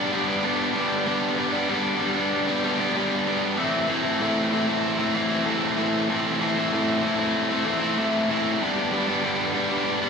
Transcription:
Already playing: G2 B3 D4
0.00 G3
0.11 D3 G3 B3 D4
0.27 G3 B3 D4
0.43 G2 D3 G3 B3 D4
0.74 D3 G3 B3 D4
1.05 G2 D3 G3 B3 D4
1.37 D3 G3 B3 D4
1.52 G3 B3 D4
1.68 G2 D3 G3 B3 D4
1.99 D3 G3 B3 D4
2.15 G3 B3 D4
2.47 G3 B3 D4
2.63 D3 G3 B3 D4
2.79 G3 B3 D4
2.95 G2 D3 G3 B3 D4
3.26 D3 G3 B3 D4
3.57 A2 E3 A3 C4 E4
3.88 E3 A3 C4 E4
4.04 A3 C4 E4
4.20 A2 E3 A3 C4 E4
4.51 E3 A3 C4 E4
4.67 A3 C4 E4
4.99 A3 C4 E4
5.14 E3 A3 C4 E4
5.30 A3 C4 E4
5.45 A2 E3 A3 C4 E4
5.76 E3 A3 C4 E4
6.08 A2 E3 A3 C4 E4
6.40 E3 A3 C4 E4
6.56 A3 C4 E4
6.72 A2 E3 A3 C4 E4
7.03 E3 A3 C4 E4
7.18 A3 C4 E4
7.50 A3 C4 E4
7.65 E3 A3 C4 E4
7.81 A3 C4 E4
7.97 A2 E3 A3 C4 E4
8.29 E3 A3 C4 E4
8.61 G2 D3 G3 B3 D4
8.92 D3 G3 B3 D4
9.07 G3 B3 D4
9.22 G2 D3 G3 B3 D4
9.53 D3 G3 B3 D4
9.69 G3 B3 D4
10.01 G3 B3 D4

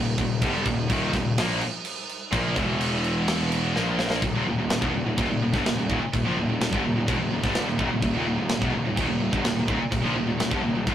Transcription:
Already playing: D#1 D#2 A#2 G3 D#4 A#4
0.18 D#1 D#2 A#2, kick, crash
0.42 G1 G2 D3 G3, kick, crash
0.65 D#1 D#2 A#2, kick, crash
0.90 D#1 D#2 A#2 D#3, kick, crash
1.12 D#1 D#2 A#2, kick, snare, crash
1.17 D#2 A#2
1.38 A#1 A#2 F3 A#3, snare, crash
1.61 crash
1.85 crash
2.09 crash
2.32 A#1 A#2 F3 A#3, kick, crash
2.56 E1 E2 B2 E3 B3 B4, kick, crash
2.81 crash
3.04 crash
3.28 snare, crash
3.52 crash
3.75 A#1 A#2 F3 A#3 A#4, snare
3.99 snare
4.10 snare
4.22 D#1 D#2 A#2 D#3 D#4 A#4, kick, crash
4.34 D#1 D#2 A#2
4.46 D#1 D#2 A#2
4.58 D#1 D#2 A#2
4.70 D#1 D#2 A#2, snare, crash
4.81 E1 E2 B2, kick
4.93 D#1 D#2 A#2
5.06 D#1 D#2 A#2
5.18 D#1 D#2 A#2, kick, crash
5.29 D#1 D#2 A#2
5.41 D#1 D#2 A#2
5.53 G1 G2 D3, kick, snare
5.66 D#1 D#2 A#2, snare, crash
5.78 D#1 D#2 A#2
5.90 D#1 D#2 A#2, kick
6.02 muted picked electric bass stroke, muted distorted electric guitar stroke
6.13 D#1 D#2 A#2, kick, crash
6.24 A#1 A#2 F3
6.37 D#1 D#2 A#2
6.48 D#1
6.52 D#2 A#2
6.61 D#1 D#2 A#2, snare, crash
6.73 G1 G2 D3, kick
6.84 D#1 D#2 A#2
6.96 D#1 D#2 A#2
7.08 E1 E2 B2, kick, crash
7.17 D#1 D#2 A#2
7.21 A#2
7.32 D#1 D#2 A#2
7.44 G1 G2 D3 G3, kick, snare
7.55 snare, crash
7.67 D#1 D#2 A#2
7.79 D#1 D#2 A#2, kick
7.91 D#1 D#2 A#2
8.00 D#1 D#2 A#2, kick, crash
8.05 D#2 A#2
8.13 D#1 D#2 A#2
8.17 D#2 A#2
8.27 D#1 D#2 A#2
8.36 D#1 D#2 A#2
8.41 D#2 A#2
8.49 D#1 D#2, snare, crash
8.53 A#2
8.61 E1 E2, kick
8.65 E2 B2
8.73 D#1 D#2 A#2
8.78 A#2
8.85 D#1 D#2 A#2
8.89 D#2 A#2
8.95 D#1 D#2 A#2, kick, crash
9.01 D#2 A#2
9.06 D#1 D#2 A#2
9.12 D#2 A#2
9.18 D#1 D#2 A#2
9.23 D#2 A#2
9.32 G1 G2 D3, kick
9.37 D3
9.44 D#1 D#2 A#2, snare, crash
9.48 D#2 A#2
9.55 D#1 D#2 A#2
9.60 D#2 A#2
9.68 D#1 D#2 A#2, kick
9.72 A#2
9.79 muted distorted electric guitar stroke, muted picked electric bass stroke
9.83 muted distorted electric guitar stroke
9.92 D#1 D#2 A#2, kick, crash
10.04 A#1 A#2 F3
10.14 D#1 D#2
10.19 D#2 A#2
10.28 D#1 D#2 A#2
10.40 D#1 D#2 A#2, snare, crash
10.51 G1 G2 D3, kick
10.64 D#1 D#2 A#2
10.77 D#1 D#2 A#2
10.87 E1 E2 B2, kick, crash

